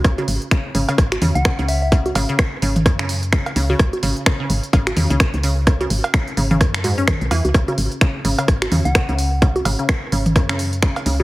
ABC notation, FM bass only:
X:1
M:4/4
L:1/16
Q:"Swing 16ths" 1/4=128
K:C#m
V:1 name="FM bass" clef=bass
C,, z G,,, z3 G,,, z G,,,2 E,, C,, z C,,3- | C,,2 G,,, z3 G,,,2 F,,4- F,, z C,,2 | C,, z G,,, z3 G,,, z G,,,2 E,, C,, z C,,3- | C,,2 G,,, z3 G,,,2 F,,4- F,, B,,, E,, C,, |
C,, z G,,, z3 G,,, z G,,,2 E,, C,, z C,,3- | C,,2 G,,, z3 G,,,2 F,,4- F,, z C,,2 |]